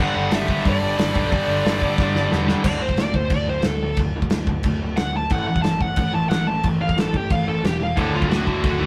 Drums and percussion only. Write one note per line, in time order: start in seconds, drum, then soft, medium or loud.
0.31 snare loud
0.31 open hi-hat medium
0.48 kick medium
0.65 kick loud
0.65 open hi-hat medium
0.99 snare loud
0.99 open hi-hat medium
1.16 kick loud
1.32 kick loud
1.32 open hi-hat medium
1.66 snare loud
1.66 open hi-hat medium
1.82 kick medium
1.98 kick loud
1.98 snare medium
2.16 snare medium
2.32 snare medium
2.48 snare loud
2.64 kick loud
2.64 crash loud
2.64 crash medium
2.89 kick medium
2.97 snare loud
2.97 crash medium
3.14 kick medium
3.30 kick loud
3.30 crash medium
3.62 snare loud
3.62 crash medium
3.97 kick loud
3.97 crash medium
4.22 kick medium
4.30 snare loud
4.30 crash medium
4.47 kick medium
4.63 kick loud
4.63 crash medium
4.97 snare loud
4.97 crash medium
5.30 kick loud
5.30 crash medium
5.56 kick medium
5.64 snare loud
5.64 crash medium
5.81 kick medium
5.96 kick loud
5.96 crash medium
6.31 snare loud
6.31 crash medium
6.63 kick loud
6.63 crash medium
6.89 kick medium
6.98 snare loud
6.98 crash medium
7.14 kick medium
7.30 kick loud
7.30 crash medium
7.65 snare loud
7.65 crash medium
7.97 kick loud
7.97 crash medium
8.22 kick medium
8.31 snare loud
8.31 crash medium
8.47 kick medium
8.64 kick loud
8.64 crash medium